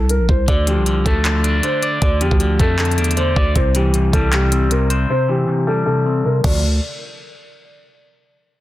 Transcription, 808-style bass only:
Already playing: C2
0.20 A#1
0.29 C2
0.48 D2
0.77 C2
1.06 D2
2.02 D2
2.21 E2
2.31 D2
2.59 F2
2.98 E2
3.36 D2
3.56 C2
4.13 C2
6.44 D2

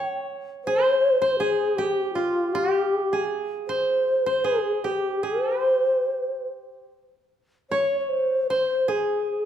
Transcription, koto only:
Already playing: C#5 G5
0.67 C5
1.22 C5
1.40 G#4
1.78 G4
2.15 F4
2.55 G4
3.13 G#4
3.69 C5
4.26 C5
4.44 G#4
4.84 G4
5.23 G#4
5.62 C5
7.71 C#5
8.50 C5
8.88 G#4

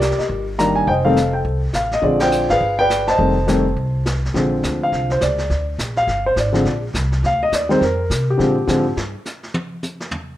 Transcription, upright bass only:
Already playing: C2
0.18 muted upright bass stroke
0.29 G1
0.87 F1
1.45 C2
1.74 A1
2.03 A#1
2.50 G#1
2.61 G1
3.19 F1
3.77 C2
4.34 A#1
4.63 D2
4.92 C2
5.21 C#2
5.50 D2
5.79 A#1
6.07 G1
6.36 G#1
6.65 A#1
6.94 C2
7.23 D2
7.52 D#2
7.81 F2
8.10 C3
8.39 A#2
8.67 G#2
8.97 G2

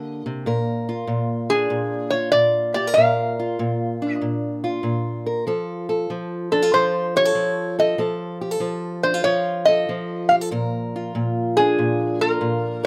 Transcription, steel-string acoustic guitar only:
Already playing: D3 A#3 G4
0.26 C3
0.46 A#2 A#4
0.89 F4
1.07 A#2
1.50 D4
1.70 A#2
2.13 F4
2.33 A#2
2.76 G4
2.87 A#4
2.97 A#2 A#4
3.39 F4
3.59 A#2
4.02 D4
4.21 A#2
4.64 F4
4.83 A#2
5.26 A#4
5.47 F3 A4
5.89 A4
6.10 F3
6.52 D4
6.62 F4
6.74 F3
7.16 G4
7.25 A4
7.35 F3
7.79 A4
7.98 F3 A4
8.41 G4
8.51 A4
8.60 F3
9.04 D4
9.14 F4
9.25 F3
9.68 A4
9.89 F3
10.31 G4
10.41 A4
10.51 A#2 A#4
10.96 F4
11.15 A#2
11.59 D4
11.78 A#2
12.21 F4
12.41 A#2

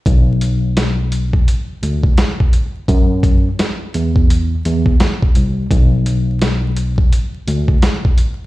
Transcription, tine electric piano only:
0.06 B1
1.83 D2
2.89 F#2
3.95 E2
4.65 E2
5.36 C2
5.71 B1
7.47 D2

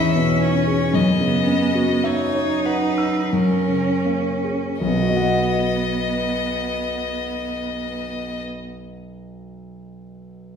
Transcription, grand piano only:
Already playing: E2
0.15 B2
0.40 D#4
0.67 G#4
0.94 F#2
1.20 C#3
1.47 C#4
1.75 F#4
2.04 E5
2.34 C#5
2.66 F#5
2.98 E6
3.33 F#2
3.68 C#3
4.05 A#3
4.44 G#4
4.81 B1
4.88 B2
4.95 B3
5.02 F#4
5.09 D#5
5.16 F#5

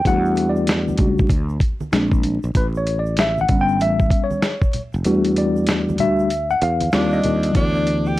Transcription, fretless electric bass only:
0.05 E2
0.99 C#2
1.29 D2
1.93 A#1
2.44 A#1
2.55 A1
3.49 G1
3.81 A1
4.94 F1
5.05 E2
5.99 D2
6.62 E2
6.94 D#2
7.25 D#2
7.55 D2

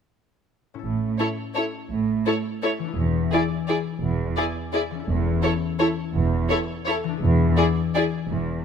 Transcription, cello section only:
0.83 A2
1.91 A2
2.97 E2
4.03 E2
5.08 E2
6.14 E2
7.22 E2
8.30 E2

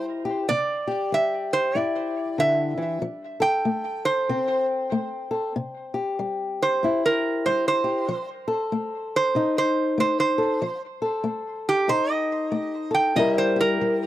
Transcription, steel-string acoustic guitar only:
Already playing: G3 E4 G4
0.25 G4
0.50 C3
0.87 G4
1.12 G3
1.75 G2 E4
2.38 D3
2.78 E3
3.02 F3
3.40 A4
3.65 A3
4.29 C3 C4
4.92 A3
5.31 A4
5.56 C3
5.94 G4
6.19 G3
6.83 G2 E4
7.46 G3
7.84 G4
8.08 F3
8.48 A4
8.72 A3
9.35 C3 D#4
9.98 A3
10.38 A4
10.62 F3
11.02 A4
11.24 A3
11.88 C3 D#4
12.52 A3
12.91 A4
13.16 C3 G3 E4 G4 A#4
13.56 G4
13.81 G3

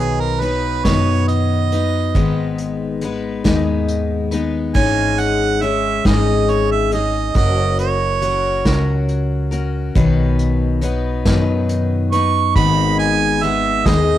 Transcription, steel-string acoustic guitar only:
Already playing: B2 D#3 F#3 B3 D#4 B4
0.41 F#3 B3 D#4 B4
0.85 B2 D#3 F#3 B3 D#4 B4
1.73 F#3 B3 D#4 B4
2.15 G#2 D#3 G#3 B3 D#4 B4
3.02 G#3 B3 D#4 B4
3.44 G#2 D#3 G#3 B3 D#4 B4
4.31 G#3 B3 D#4 B4
4.74 G#2 E3 G#3 C#4 D#4 G#4
5.61 G#3 C#4 G#4
6.05 G#2 E3 G#3 C#4 D#4 G#4
6.91 G#3 C#4 D#4 G#4
7.35 F#3 C#4 F#4 A#4
8.21 F#3 C#4 F#4 A#4
8.65 F#3 C#4 F#4 A#4
9.51 C#4 F#4 A#4
9.95 B2 D#3 F#3 B3 D#4 B4
10.81 F#3 B3 D#4 B4
11.26 B2 D#3 F#3 B3 D#4 B4
12.12 F#3 B3 D#4 B4
12.56 G#2 D#3 G#3 B3 D#4 G#4
13.44 G#3 B3 G#4
13.86 G#2 D#3 G#3 B3 D#4 G#4

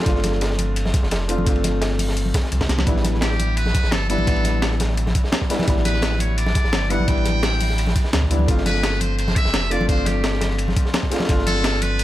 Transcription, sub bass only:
0.06 G1
1.03 G1
1.11 F1
1.38 G1
1.47 G1
2.52 C2
2.69 C2
2.87 A1
3.84 A1
3.92 G1
4.19 A1
4.27 A1
5.68 A1
6.64 A1
6.73 G1
6.99 A1
7.08 A1
8.13 D2
8.31 D2
8.48 G1
9.45 G1
9.54 F1
9.81 G1
9.89 G1
11.29 G1

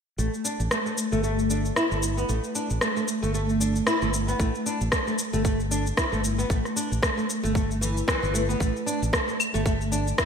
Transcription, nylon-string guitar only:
0.18 A3
0.45 D4
0.71 A3
0.86 A3
1.12 A3
1.24 A3
1.50 D4
1.76 E4
1.91 A3
2.17 B3
2.29 A3
2.55 D4
2.82 A3
2.97 A3
3.22 A3
3.34 A3
3.60 D4
3.87 E4
4.02 A3
4.28 B3
4.40 A3
4.66 D4
4.92 A3
5.07 A3
5.33 A3
5.45 A3
5.71 D4
5.97 E4
6.12 A3
6.38 B3
6.50 A3
6.76 D4
7.03 A3
7.17 A3
7.43 A3
7.55 A3
7.81 E3
8.08 E3
8.23 E3
8.34 A3
8.49 B3
8.60 A3
8.86 D4
9.13 A3
9.28 A3
9.54 A3
9.66 A3
9.92 D4
10.18 E4

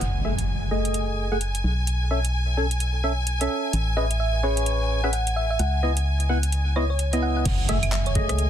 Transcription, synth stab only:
0.25 A3 G#4 E5
0.71 A3 G#4 D#5
1.32 A3 G#4 F#5
2.11 C#4 A4 E5
2.57 C#4 A4 G#5
3.04 C#4 A4 E5
3.41 C#4 A4 E5
3.97 C#4 G#4 B4 D#5
4.43 C#4 G#4 B4 C#5
5.04 C#4 G#4 B4 E5
5.83 B3 E4 D#5
6.29 B3 E4 F#5
6.76 B3 E4 D#5
7.13 B3 E4 D#5
7.69 A3 G#4 E5
8.15 A3 G#4 D#5

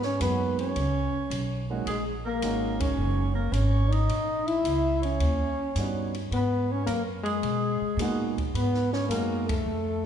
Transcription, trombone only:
0.06 C#4
0.23 B3
0.61 C#4
1.89 G#3
2.26 A#3
2.80 C#4
3.35 A#3
3.52 C#4
3.91 D#4
4.47 E4
5.05 C#4
6.34 B3
6.72 C#4
6.86 A#3
7.23 G#3
8.56 B3
8.93 C#4
9.08 A#3
9.47 A3

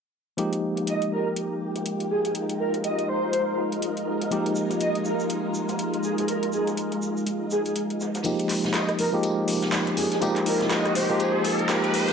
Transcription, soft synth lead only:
0.87 D#5
1.12 A#4
2.10 G#4
2.25 G#4
2.59 A#4
2.84 D#5
3.08 C5
4.81 D#5
5.05 A#4
6.04 G#4
6.18 G#4
6.28 A#4
6.53 G#4
7.51 G#4
7.66 G#4
8.74 D#5
8.99 A#4
9.97 G#4
10.12 G#4
10.46 A#4
10.71 D#5
10.95 C5

